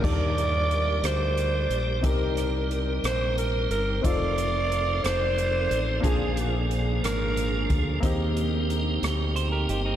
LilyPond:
<<
  \new Staff \with { instrumentName = "Alto saxophone" } { \time 6/8 \key ees \major \tempo 4. = 60 d''4. c''4. | bes'4 r8 c''8 bes'8 bes'8 | d''4. c''4. | aes'4 r8 bes'4 r8 |
r2. | }
  \new Staff \with { instrumentName = "Clean electric guitar" } { \time 6/8 \key ees \major r2. | r2. | r2. | r2. |
r2 c''16 <g' bes'>16 <ees' g'>16 <c' ees'>16 | }
  \new Staff \with { instrumentName = "Grand piano" } { \time 6/8 \key ees \major << { <f' bes'>16 r2 r8. | r2. | r2. | r2. |
r2. | } \\ { <d' ees' g' a' bes'>2. | <c' ees' g' bes'>2. | <c' ees' f' a'>2. | <bes d' f' aes'>2. |
<bes c' ees' g'>2. | } >> }
  \new Staff \with { instrumentName = "Grand piano" } { \clef bass \time 6/8 \key ees \major ees4. r4. | c4. r4. | r2. | bes,4. r4. |
ees4. r4. | }
  \new Staff \with { instrumentName = "Tonewheel organ" } { \time 6/8 \key ees \major << { <g g' bes' d''>2. | <g c' ees' a' bes'>2. | <f c' ees' a'>2. | <f bes d' aes'>2. |
<bes c' ees' g'>2. | } \\ { d'16 r2 r8. | r2. | r2. | r2. |
r2. | } >> }
  \new Staff \with { instrumentName = "Fingered electric bass" } { \clef bass \time 6/8 \key ees \major ees,4. d,4 bes,,8 | c,4. bes,,4 g,,8 | f,,4. f,,4 a,,8 | bes,,4. aes,,4 d,8 |
ees,4. d,4 g,,8 | }
  \new DrumStaff \with { instrumentName = "Drums" } \drummode { \time 6/8 <cymc bd>8 hh8 hh8 <hh ss>8 hh8 hh8 | <hh bd>8 <hh ss>8 hh8 <hh ss>8 hh8 hh8 | <hh bd>8 hh8 hh8 <hh ss>8 hh8 hh8 | <hh bd>8 hh8 hh8 <hh ss>8 hh8 <hh bd>8 |
<hh bd>8 hh8 hh8 <hh ss>8 hh8 hh8 | }
>>